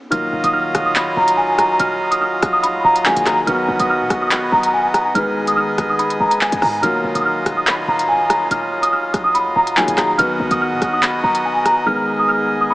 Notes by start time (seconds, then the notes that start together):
0.10 D#1 D#3 F#3 A#3 F4 A#4 D#5 F6, closed hi-hat
0.33 D#1
0.44 D#1 D#6, closed hi-hat
0.53 F6
0.75 D#1, cross-stick, closed hi-hat
0.86 D#6
0.96 B5, clap, closed hi-hat
1.17 D1 A#5
1.28 closed hi-hat
1.37 G#5
1.58 A#5, cross-stick, closed hi-hat
1.80 D#1 F6, closed hi-hat
2.11 D#6, closed hi-hat
2.21 F6
2.43 A#1, cross-stick, closed hi-hat
2.53 D#6
2.63 B5, closed hi-hat
2.75 D#2
2.84 D1 A#5
2.96 closed hi-hat
3.05 D#3 F#3 A#3 F4 G#4 G#5, clap
3.17 D#1, closed hi-hat
3.26 D#1, cross-stick, clap, closed hi-hat
3.46 B1 D#3 F#3 B3 F#4 B4 F6, closed hi-hat
3.68 B1
3.80 B1 D#6, closed hi-hat
3.89 F6
4.00 B2
4.10 B1, cross-stick, closed hi-hat
4.22 D#6
4.31 B5, clap, closed hi-hat
4.52 B1 A#5
4.63 closed hi-hat
4.74 G#5
4.94 A#5, cross-stick, closed hi-hat
5.14 G#1 D#3 G#3 B3 G#4 B4 F6, closed hi-hat
5.47 D#6, closed hi-hat
5.57 F6
5.78 G#1, cross-stick, closed hi-hat
5.89 D#6
5.99 B5, closed hi-hat
6.10 closed hi-hat
6.20 G#1 A#5
6.31 closed hi-hat
6.41 G#5, clap
6.52 D#2, closed hi-hat
6.62 G#2 A#5, cross-stick, open hi-hat
6.82 D#1 D#3 F#3 A#3 F4 A#4 F6, closed hi-hat
7.04 D#1
7.15 D#1 D#6, closed hi-hat
7.25 F6
7.46 D#1, cross-stick, closed hi-hat
7.57 D#6
7.67 B5, clap, closed hi-hat
7.88 D1 A#5
7.99 closed hi-hat
8.08 G#5
8.30 A#5, cross-stick, closed hi-hat
8.51 D#1 F6, closed hi-hat
8.82 D#6, closed hi-hat
8.93 F6
9.14 A#1, cross-stick, closed hi-hat
9.24 D#6
9.34 B5, closed hi-hat
9.46 D#2
9.56 D1 A#5
9.67 closed hi-hat
9.76 D#3 F#3 A#3 F4 G#4 G#5, clap
9.88 D#1, closed hi-hat
9.98 D#1 A#5, cross-stick, clap, closed hi-hat
10.18 B1 D#3 F#3 B3 F#4 B4 D#5 F6, closed hi-hat
10.40 B1
10.51 B1 D#6, closed hi-hat
10.61 F6
10.72 B2
10.82 B1, cross-stick, closed hi-hat
10.93 D#6
11.02 B5, clap, closed hi-hat
11.23 B1 A#5
11.35 closed hi-hat
11.45 G#5
11.65 A#5, cross-stick, closed hi-hat
11.86 D#3 G#3 B3 G#4 B4 F6
12.19 D#6
12.28 F6
12.61 D#6
12.70 B5